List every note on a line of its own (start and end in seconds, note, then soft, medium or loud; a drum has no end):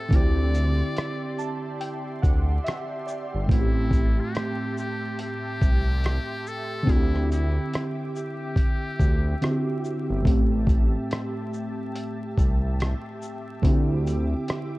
0.00 14.79 G4 medium
0.00 0.17 A4 loud
0.09 0.82 D2 loud
0.09 3.44 D3 medium
0.09 3.45 C4 medium
0.09 3.45 D5 medium
0.09 14.79 E5 medium
0.09 6.83 C6 medium
0.09 kick loud
0.13 3.46 E4 medium
0.13 3.47 G4 medium
0.13 1.82 D5 loud
0.13 closed hi-hat medium
0.55 closed hi-hat soft
0.55 shaker soft
0.97 cross-stick loud
0.97 closed hi-hat medium
1.38 1.78 A5 medium
1.38 shaker soft
1.80 2.20 G5 medium
1.80 closed hi-hat medium
2.22 2.59 D2 medium
2.22 2.62 F#5 medium
2.22 kick medium
2.22 closed hi-hat soft
2.22 shaker soft
2.64 3.04 E5 medium
2.64 closed hi-hat medium
2.68 cross-stick loud
3.07 3.46 D5 medium
3.07 shaker soft
3.34 3.47 G1 medium
3.47 4.20 A1 medium
3.47 6.82 A2 medium
3.47 6.83 A3 medium
3.47 6.85 A5 medium
3.47 kick loud
3.51 6.84 C4 medium
3.51 4.22 E4 medium
3.51 3.59 F#4 medium
3.51 closed hi-hat medium
3.60 6.89 G4 medium
3.91 kick medium
3.91 closed hi-hat soft
3.91 shaker soft
4.21 4.78 G4 medium
4.35 cross-stick loud
4.35 closed hi-hat medium
4.78 5.17 G4 loud
4.78 shaker soft
5.19 6.49 G4 loud
5.19 closed hi-hat medium
5.62 6.19 C2 medium
5.62 kick medium
5.62 closed hi-hat soft
5.62 shaker soft
6.04 cross-stick loud
6.04 closed hi-hat medium
6.47 6.92 A4 loud
6.47 shaker soft
6.83 9.34 D3 medium
6.83 9.36 C4 medium
6.87 7.58 D2 loud
6.87 9.37 E4 medium
6.87 6.96 F#4 medium
6.87 10.22 D6 medium
6.87 kick loud
6.87 closed hi-hat medium
6.91 7.31 E4 loud
6.96 9.41 G4 medium
7.16 cross-stick soft
7.32 7.88 E4 medium
7.32 closed hi-hat soft
7.32 shaker soft
7.74 cross-stick loud
7.74 closed hi-hat medium
8.16 9.81 G4 loud
8.16 shaker soft
8.56 kick medium
8.56 closed hi-hat medium
9.00 9.35 D2 medium
9.00 kick medium
9.00 closed hi-hat soft
9.00 shaker soft
9.41 10.26 D3 medium
9.41 10.25 C4 medium
9.41 10.27 E4 medium
9.41 9.50 F#4 soft
9.41 cross-stick loud
9.41 closed hi-hat medium
9.51 10.27 G4 medium
9.85 shaker soft
10.10 10.23 G1 loud
10.22 13.57 A2 medium
10.22 13.59 A3 medium
10.22 13.60 A5 medium
10.22 kick loud
10.26 10.96 A1 loud
10.26 13.60 C4 medium
10.26 13.61 G4 medium
10.26 closed hi-hat medium
10.67 kick loud
10.67 closed hi-hat soft
10.67 shaker soft
11.11 cross-stick loud
11.11 closed hi-hat medium
11.54 shaker soft
11.95 closed hi-hat medium
12.38 12.94 C2 medium
12.38 kick medium
12.38 closed hi-hat soft
12.38 shaker soft
12.80 cross-stick loud
12.80 closed hi-hat medium
13.22 shaker soft
13.62 14.34 D2 loud
13.62 14.79 D3 medium
13.62 14.79 C4 medium
13.62 14.79 D6 medium
13.62 kick loud
13.62 closed hi-hat medium
13.67 14.79 E4 medium
13.67 14.79 G4 medium
14.07 closed hi-hat soft
14.07 shaker soft
14.48 cross-stick loud
14.48 closed hi-hat medium